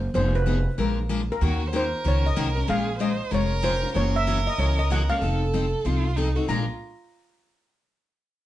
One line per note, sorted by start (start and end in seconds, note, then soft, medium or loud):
0.14 0.65 F1 medium
0.14 0.34 F3 medium
0.14 0.35 B3 medium
0.14 0.35 D#4 medium
0.14 0.35 G#4 medium
0.14 0.33 C5 medium
0.35 0.64 B4 medium
0.46 0.57 F3 medium
0.46 0.57 B3 medium
0.46 0.57 D#4 medium
0.46 0.57 G#4 medium
0.78 1.29 A#1 medium
0.78 0.98 F3 medium
0.78 0.98 G#3 medium
0.78 0.98 D4 medium
0.78 0.98 F4 medium
0.78 0.98 A#4 medium
0.78 1.26 A#4 medium
1.09 1.20 F3 medium
1.09 1.20 G#3 medium
1.09 1.21 D4 medium
1.09 1.21 F4 medium
1.09 1.21 A#4 medium
1.32 1.76 A#4 medium
1.41 1.92 D#2 medium
1.41 1.61 D#3 medium
1.41 1.61 A#3 medium
1.41 1.62 C#4 medium
1.41 1.69 F#4 medium
1.41 1.62 F#4 medium
1.41 1.62 A#4 medium
1.68 1.76 C5 medium
1.73 1.84 D#3 medium
1.73 1.84 A#3 medium
1.73 1.84 C#4 medium
1.73 1.84 F#4 medium
1.73 1.84 A#4 medium
1.73 2.70 A#4 medium
1.73 2.07 C5 medium
2.04 2.32 C#2 medium
2.04 2.25 D#3 medium
2.04 2.25 A#3 medium
2.04 2.25 C#4 medium
2.04 2.25 F#4 medium
2.04 2.25 A#4 medium
2.04 2.26 C#5 medium
2.26 2.55 D#5 medium
2.36 2.64 C2 medium
2.36 2.47 D#3 medium
2.36 2.47 A#3 medium
2.36 2.47 C#4 medium
2.36 2.48 F#4 loud
2.36 2.48 A#4 medium
2.55 2.67 C#4 soft
2.55 2.68 F#4 soft
2.55 2.67 A#4 medium
2.68 3.19 A#1 medium
2.68 2.88 F3 medium
2.68 2.88 G#3 medium
2.68 2.88 C#4 medium
2.68 2.88 F4 medium
2.68 2.99 G#4 medium
2.68 2.88 A#4 medium
2.68 3.02 F5 medium
2.99 3.10 F3 medium
2.99 3.11 G#3 medium
2.99 3.11 C#4 medium
2.99 3.11 F4 medium
2.99 3.11 A#4 medium
2.99 3.32 C5 medium
2.99 3.30 D#5 medium
3.31 3.82 F1 medium
3.31 3.51 F3 medium
3.31 3.51 G#3 medium
3.31 3.51 C#4 medium
3.31 3.52 F4 medium
3.31 3.94 A#4 loud
3.31 3.52 A#4 medium
3.31 3.66 C#5 medium
3.63 3.74 F3 medium
3.63 3.74 G#3 medium
3.63 3.74 C#4 medium
3.63 3.74 F4 medium
3.63 3.74 A#4 medium
3.63 3.93 C5 medium
3.82 3.94 C#4 soft
3.82 3.95 F4 medium
3.82 3.94 A#4 medium
3.94 4.46 F#1 medium
3.94 4.15 C#3 medium
3.94 4.15 E3 medium
3.94 4.15 A#3 medium
3.94 4.15 C#4 medium
3.94 4.15 F#4 medium
3.94 5.18 A#4 loud
3.94 4.13 C#5 loud
4.16 4.48 E5 loud
4.27 4.38 C#3 medium
4.27 4.38 E3 medium
4.27 4.38 A#3 medium
4.27 4.38 C#4 medium
4.27 4.38 F#4 medium
4.47 4.59 D#5 medium
4.58 5.09 C#2 medium
4.58 4.78 C#3 medium
4.58 4.78 E3 medium
4.58 4.79 A#3 medium
4.58 4.79 C#4 medium
4.58 4.79 F#4 medium
4.58 4.68 C#5 medium
4.79 4.84 D#5 medium
4.90 5.01 C#3 medium
4.90 5.01 E3 medium
4.90 5.01 A#3 medium
4.90 5.01 C#4 medium
4.90 5.02 F#4 medium
4.90 5.00 F#5 medium
5.09 5.22 A#3 soft
5.09 5.22 C#4 medium
5.09 5.21 F#4 medium
5.09 6.13 F5 medium
5.21 5.72 F1 medium
5.21 5.42 F3 medium
5.21 5.42 C4 medium
5.21 5.42 D#4 medium
5.21 5.87 A4 medium
5.21 5.42 A4 medium
5.54 5.64 F3 medium
5.54 5.64 C4 medium
5.54 5.65 D#4 medium
5.54 5.65 A4 medium
5.85 6.36 C2 medium
5.85 6.05 F3 medium
5.85 6.05 C4 medium
5.85 6.05 D#4 medium
5.85 6.18 F4 medium
5.85 6.06 A4 medium
6.16 6.28 F3 medium
6.16 6.28 C4 medium
6.16 6.38 D#4 medium
6.16 6.28 D#4 medium
6.16 6.28 A4 medium
6.35 6.49 C4 soft
6.35 6.48 D#4 soft
6.35 6.49 F#4 medium
6.35 6.48 A4 medium
6.48 6.66 A#1 medium
6.48 6.63 A#2 medium
6.48 6.64 F3 medium
6.48 6.64 G#3 medium
6.48 6.64 D4 medium
6.48 6.67 F4 medium
6.48 6.64 F4 medium
6.48 6.64 A#4 medium
6.48 6.66 A#5 medium